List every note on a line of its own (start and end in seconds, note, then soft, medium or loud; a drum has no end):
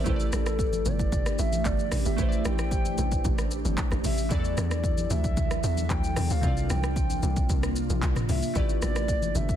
0.00 2.13 A3 medium
0.00 0.19 A#4 medium
0.00 0.15 D5 medium
0.05 0.31 A1 loud
0.05 4.27 A3 medium
0.05 9.56 D4 medium
0.05 2.14 E4 medium
0.05 4.27 G4 medium
0.05 2.15 G4 medium
0.05 0.31 A4 medium
0.05 2.16 B4 medium
0.05 kick loud
0.05 low conga medium
0.05 shaker medium
0.10 0.14 C5 medium
0.16 2.19 D5 medium
0.16 shaker medium
0.33 0.83 A1 loud
0.33 0.88 A4 medium
0.33 cross-stick loud
0.33 high conga medium
0.33 shaker medium
0.46 cross-stick loud
0.46 shaker medium
0.59 kick loud
0.59 shaker medium
0.73 high conga medium
0.73 shaker medium
0.85 1.36 G1 loud
0.85 1.39 D5 loud
0.85 high conga medium
0.85 low conga medium
0.85 shaker medium
0.99 kick medium
0.99 shaker medium
1.12 kick loud
1.12 low conga medium
1.12 shaker medium
1.26 cross-stick loud
1.26 shaker medium
1.39 1.64 A1 loud
1.39 1.67 E5 loud
1.39 shaker medium
1.53 high conga medium
1.53 shaker medium
1.65 1.91 G1 loud
1.65 2.06 D5 loud
1.65 kick loud
1.65 clap medium
1.65 shaker medium
1.78 high conga medium
1.78 shaker soft
1.92 2.05 A1 medium
1.92 cross-stick medium
1.92 open hi-hat medium
1.92 high conga medium
1.92 low conga medium
1.92 shaker loud
2.05 2.18 G1 medium
2.05 2.47 E5 loud
2.05 shaker medium
2.16 2.44 A1 loud
2.16 4.26 A3 medium
2.16 4.27 E4 medium
2.16 4.27 G4 medium
2.16 kick loud
2.16 low conga medium
2.16 shaker medium
2.21 4.28 B4 medium
2.21 2.27 C5 medium
2.29 4.32 D5 medium
2.29 shaker medium
2.45 2.96 A1 loud
2.45 3.25 G5 loud
2.45 cross-stick loud
2.45 high conga medium
2.45 shaker medium
2.59 cross-stick loud
2.59 shaker medium
2.71 kick loud
2.71 shaker medium
2.85 high conga medium
2.85 shaker medium
2.98 3.23 A1 loud
2.98 high conga medium
2.98 low conga medium
2.98 shaker medium
3.12 kick loud
3.12 shaker medium
3.24 3.63 A1 loud
3.24 kick loud
3.24 low conga medium
3.24 shaker medium
3.38 cross-stick loud
3.38 shaker medium
3.51 shaker loud
3.65 3.77 G1 medium
3.65 high conga medium
3.65 shaker medium
3.78 kick loud
3.78 clap loud
3.78 shaker medium
3.91 4.04 A1 medium
3.91 cross-stick medium
3.91 high conga medium
3.91 shaker soft
4.04 4.30 A1 medium
4.04 4.33 E5 medium
4.04 open hi-hat medium
4.04 high conga medium
4.04 low conga medium
4.04 shaker loud
4.18 shaker medium
4.29 4.56 E2 loud
4.29 6.38 E3 medium
4.29 6.41 E3 medium
4.29 6.41 F#3 medium
4.29 6.40 F#3 medium
4.29 6.39 E4 medium
4.29 6.41 A4 medium
4.29 4.57 D5 medium
4.29 kick loud
4.29 low conga medium
4.29 shaker medium
4.33 4.39 G#4 soft
4.33 6.41 D5 medium
4.39 6.44 A4 medium
4.45 shaker soft
4.57 5.08 E2 loud
4.57 5.13 D5 loud
4.57 cross-stick loud
4.57 high conga medium
4.57 shaker medium
4.71 cross-stick loud
4.71 shaker medium
4.84 kick loud
4.84 shaker medium
4.97 high conga medium
4.97 shaker medium
5.10 5.61 D2 loud
5.10 5.64 E5 loud
5.10 high conga medium
5.10 low conga medium
5.10 shaker medium
5.24 kick loud
5.24 shaker medium
5.37 kick loud
5.37 low conga medium
5.37 shaker medium
5.51 cross-stick loud
5.51 shaker medium
5.64 5.89 E2 medium
5.64 5.92 E5 loud
5.64 shaker loud
5.77 high conga medium
5.77 shaker medium
5.90 6.15 D2 loud
5.90 6.33 G5 loud
5.90 kick loud
5.90 clap medium
5.90 shaker medium
6.03 high conga medium
6.03 shaker soft
6.16 6.30 E2 medium
6.16 cross-stick loud
6.16 open hi-hat medium
6.16 high conga medium
6.16 low conga medium
6.16 shaker loud
6.30 6.43 D2 medium
6.30 6.72 F5 loud
6.30 shaker medium
6.41 6.68 C2 loud
6.41 8.51 C3 medium
6.41 8.54 C3 medium
6.41 8.54 A#3 medium
6.41 8.51 C4 medium
6.41 8.54 F4 medium
6.41 8.52 F4 medium
6.41 kick loud
6.41 low conga medium
6.41 shaker medium
6.45 8.53 A#4 medium
6.45 8.53 D5 medium
6.57 shaker soft
6.70 7.20 C2 loud
6.70 7.50 G5 loud
6.70 cross-stick loud
6.70 high conga medium
6.70 shaker medium
6.84 cross-stick loud
6.84 shaker medium
6.96 kick loud
6.96 shaker medium
7.10 high conga medium
7.10 shaker medium
7.23 7.48 C2 loud
7.23 high conga medium
7.23 low conga medium
7.23 shaker medium
7.37 kick loud
7.37 shaker medium
7.49 7.88 C2 medium
7.49 kick loud
7.49 low conga medium
7.49 shaker medium
7.63 cross-stick loud
7.63 shaker medium
7.76 shaker loud
7.90 8.02 A#1 medium
7.90 high conga medium
7.90 shaker medium
8.02 8.16 C2 loud
8.02 kick loud
8.02 clap loud
8.02 shaker medium
8.15 cross-stick medium
8.15 mid tom medium
8.15 high conga medium
8.15 shaker soft
8.29 8.42 C2 medium
8.29 8.58 E5 medium
8.29 open hi-hat medium
8.29 high conga medium
8.29 low conga medium
8.29 shaker loud
8.43 shaker medium
8.54 8.81 A1 loud
8.54 9.56 A3 medium
8.54 9.56 E4 medium
8.54 9.56 G4 medium
8.54 8.83 D5 medium
8.54 kick loud
8.54 low conga medium
8.54 shaker medium
8.58 9.56 B4 medium
8.58 9.56 D5 medium
8.69 shaker soft
8.82 9.33 A1 loud
8.82 9.37 D5 loud
8.82 cross-stick medium
8.82 high conga medium
8.82 shaker medium
8.96 cross-stick loud
8.96 shaker medium
9.08 kick loud
9.08 shaker medium
9.22 high conga medium
9.22 shaker medium
9.35 9.56 G1 medium
9.35 9.56 E5 loud
9.35 high conga medium
9.35 low conga medium
9.35 shaker medium
9.49 kick loud
9.49 shaker medium